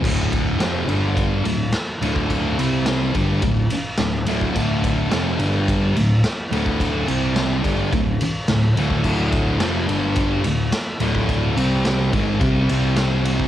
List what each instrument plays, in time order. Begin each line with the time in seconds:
0.03 picked electric bass D1, distorted electric guitar D2 A2 D3, kick, crash
0.32 kick, ride
0.59 picked electric bass F1, distorted electric guitar F2 C3 F3, snare, ride
0.87 picked electric bass G1, distorted electric guitar G2 D3 G3, ride
1.17 kick, ride
1.44 picked electric bass D1, distorted electric guitar D2 A2, ride
1.73 snare, ride
2.01 picked electric bass D1, distorted electric guitar D2 A2 D3, ride
2.16 kick
2.30 kick, ride
2.58 picked electric bass C2, distorted electric guitar C3 G3 C4, ride
2.86 snare, ride
3.14 picked electric bass G1, distorted electric guitar G2 D3 G3, kick, ride
3.42 picked electric bass D1, distorted electric guitar D2 A2, kick, ride
3.70 muted distorted electric guitar stroke, ride
3.98 picked electric bass D1, distorted electric guitar D2 A2, snare, ride
4.26 picked electric bass D1, distorted electric guitar D2 A2 D3, ride
4.41 kick
4.54 picked electric bass D1, distorted electric guitar D2 A2 D3, kick, ride
4.84 kick, ride
5.10 picked electric bass F1, distorted electric guitar F2 C3 F3, snare, ride
5.39 picked electric bass G1, distorted electric guitar G2 D3 G3, ride
5.68 kick, ride
5.96 picked electric bass D1, distorted electric guitar D2 A2, ride
6.24 snare, ride
6.52 picked electric bass D1, distorted electric guitar D2 A2 D3, ride
6.66 kick
6.80 kick, ride
7.08 picked electric bass C2, distorted electric guitar C3 G3 C4, ride
7.36 snare, ride
7.63 picked electric bass G1, distorted electric guitar G2 D3 G3, kick, ride
7.93 picked electric bass D1, distorted electric guitar D2 A2, kick, ride
8.20 muted picked electric bass stroke, muted distorted electric guitar stroke, ride
8.48 picked electric bass D1, distorted electric guitar D2 A2, snare, ride
8.76 picked electric bass D1, distorted electric guitar D2 A2 D3, ride
8.90 kick
9.03 picked electric bass D1, distorted electric guitar D2 A2 D3, kick, crash
9.32 kick, ride
9.59 picked electric bass F1, distorted electric guitar F2 C3 F3, snare, ride
9.87 picked electric bass G1, distorted electric guitar G2 D3 G3, ride
10.16 kick, ride
10.44 picked electric bass D1, distorted electric guitar D2 A2, ride
10.72 snare, ride
11.00 picked electric bass D1, distorted electric guitar D2 A2 D3, ride
11.15 kick
11.29 kick, ride
11.56 picked electric bass C2, distorted electric guitar C3 G3 C4, ride
11.85 snare, ride
12.13 picked electric bass G#1, distorted electric guitar G#2 D#3 G#3, kick, ride
12.41 picked electric bass C2, distorted electric guitar C3 G3 C4, kick, ride
12.69 picked electric bass C2, distorted electric guitar C3 G3 C4, ride
12.97 snare, ride
13.25 ride
13.40 kick